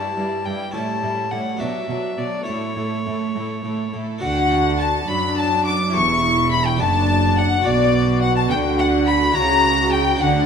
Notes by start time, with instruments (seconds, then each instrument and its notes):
Already playing: harpsichord G2 D4 E4 G4, viola section G3, violin section E4 D5, violin A5
0.16 cello section G2, harpsichord G2, viola section G3, violin section E4 D5
0.45 cello section G2, harpsichord G2, viola section G3, violin section E4 D5, violin G5
0.71 cello section A2, viola section G3, harpsichord C#4 E4 G4, violin section E4 C#5, violin A5
0.76 harpsichord A2
1.02 cello section A2, harpsichord A2, viola section G3, violin section E4 C#5
1.31 harpsichord A2, cello section A2, viola section G3, violin section E4 C#5, violin F#5
1.57 cello section B2, viola section F#3, harpsichord B3 D4 F#4, violin section D4, violin E5
1.61 harpsichord B2, violin section D5
1.88 cello section B2, harpsichord B2, viola section F#3, violin section D4 D5
2.18 cello section B2, harpsichord B2, viola section F#3, violin section D4 D5, violin D5
2.44 cello section A2, viola section A3, harpsichord E4 A4, violin section E4, violin C#5
2.48 harpsichord A2, violin section A4
2.76 cello section A2, harpsichord A2, viola section A3, violin section E4 A4
3.06 cello section A2, harpsichord A2, viola section A3, violin section E4 A4
3.35 cello section A2, harpsichord A2, viola section A3, violin section E4 A4
3.63 cello section A2, harpsichord A2, viola section A3, violin section E4 A4
3.93 cello section A2, harpsichord A2, viola section A3, violin section E4 A4
4.18 double bass section D2, cello section D3, harpsichord D4 F#4 A4, violin F#5, violin section F#5
4.23 harpsichord D3, viola section F#4, violin section F#5
4.30 violin section G5
4.38 violin section F#5
4.47 violin section G5
4.54 violin section F#5
4.80 violin section A5, violin A5
5.07 double bass section F#2, cello section F#3, harpsichord F#3, viola section D4, violin section B5, violin B5
5.37 violin section A5, violin A5
5.65 violin section D6, violin D6
5.90 double bass section E1, harpsichord C#4 G4 A4
5.94 cello section E2, harpsichord E2, viola section E4, violin section C#6, violin C#6
6.52 violin B5, violin section B5
6.66 violin G5, violin section G5
6.76 double bass section F#1, cello section F#2, harpsichord D4 F#4 D5, viola section D4, violin A5, violin section A5
6.81 harpsichord F#2, violin section A5
7.37 violin section F#5, violin F#5
7.62 double bass section B1, harpsichord D4 F#4 D5, viola section F#4
7.66 harpsichord B2, cello section B2, violin section D5, violin D5
8.22 violin section F#5, violin F#5
8.36 violin A5, violin section A5
8.49 double bass section D2, harpsichord D3, cello section D3, violin G5, violin section G5
8.79 violin F#5, violin section F#5
9.07 violin section B5, violin B5
9.32 double bass section C#2, harpsichord E4 F#4 C#5, viola section F#4, violin section A#5, violin A#5
9.36 cello section C#3, harpsichord C#3
9.91 violin section G5, violin G5
10.16 double bass section D2, harpsichord D4 F#4 B4, violin section F#5
10.21 harpsichord D3, cello section D3, viola section D4, violin section F#5, violin F#5